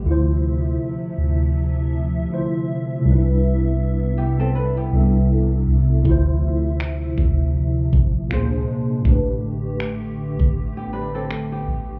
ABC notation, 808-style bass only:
X:1
M:4/4
L:1/16
Q:"Swing 16ths" 1/4=80
K:Ddor
V:1 name="808-style bass" clef=bass
D,,4 z2 D,,6 z4 | C,,8- C,,2 C,,4 C,,2 | D,,6 D,,4 _B,,,2 D,,2 z2 | A,,,6- A,,, A,,,6- A,,, A,,,2 |]